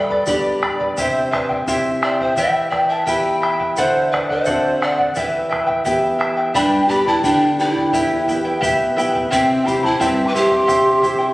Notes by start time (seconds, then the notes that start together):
Already playing: G2 A4 D5
0.10 B4 D5 B5, bombo low
0.26 B3 D4 G4 B4 D5 G5 B5, bombo low, shaker
0.62 B4 D5 G5 B5, bombo rim, bombo low
0.80 B4 D5 B5, bombo low
0.97 C3 E4 G4 C5 E5 G5, bombo low, shaker
1.31 E4 B4 C5 D5 E5 G5, bombo rim, bombo low
1.49 E4 C5 G5, bombo low
1.67 C4 E4 G4 C5 E5 G5, bombo low, shaker
2.02 E4 C5 D5 E5 G5, bombo rim
2.20 E4 C5 E5 G5, bombo low
2.36 E3 E4 G4 B4 E5 G5, bombo low, shaker
2.70 E4 B4 D5 E5 G5, bombo rim, bombo low
2.74 G5
2.89 E4 B4 E5 G5 A5
3.05 B3 E4 G4 B4 E5 G5 B5, bombo low, shaker
3.42 E4 B4 E5 G5, bombo rim
3.60 E4 B4 G5, bombo low
3.77 D3 F#4 A4 C5 D5 E5 F#5, bombo low, shaker
4.12 F#4 B4 C5 D5 F#5, bombo rim, bombo low
4.29 F#4 C5 D5 E5 F#5, bombo low
4.45 C4 D4 F#4 A4 C5 D5 F#5, bombo low, shaker
4.81 F#4 C5 D5 F#5, bombo rim
4.98 F#4 D5 F#5, bombo low
5.15 E3 E4 G4 B4 E5 G5, bombo low, shaker
5.49 E4 B4 E5 G5, bombo rim, bombo low
5.67 E4 B4 G5, bombo low
5.85 B3 E4 G4 B4 E5 G5, bombo low, shaker
6.19 E4 B4 E5 G5, bombo rim
6.37 E4 B4 G5
6.54 G2 D4 G4 B4 D5 G5 B5, bombo low, shaker
6.88 B3 D4 G4 B4 D5 G5 B5, bombo low, shaker
7.07 E4 B4 D5 A5 B5, bombo low
7.24 D3 D4 G4 B4 D5 G5 B5, bombo low, shaker
7.59 B3 D4 E4 G4 B4 D5 G5 B5, shaker
7.76 B4 D5 B5, bombo low
7.93 E2 E4 G4 B4 E5 G5, bombo low, shaker
8.28 B3 E4 G4 B4 E5 G5, bombo low, shaker
8.45 E4 B4 G5
8.61 B2 E4 G4 B4 E5 G5, bombo low, shaker
8.97 B3 E4 G4 B4 E5 G5, shaker
9.13 E4 B4 G5, bombo low
9.30 C3 C4 E4 G4 C5 E5 G5, bombo low, shaker
9.64 C4 E4 G4 C5 E5 G5 B5, bombo low, shaker
9.83 E4 C5 G5 A5, bombo low
10.00 G2 C4 E4 G4 C5 E5 G5, bombo low, shaker
10.27 B4 D6
10.33 C4 E4 G4 C5 E5 G5 C6, shaker
10.51 E4 C5 G5, bombo low
10.67 C3 E4 G4 C5 E5 G5, bombo low, shaker
11.02 C4 E4 G4 C5 E5 G5, bombo low, shaker
11.19 E4 C5 G5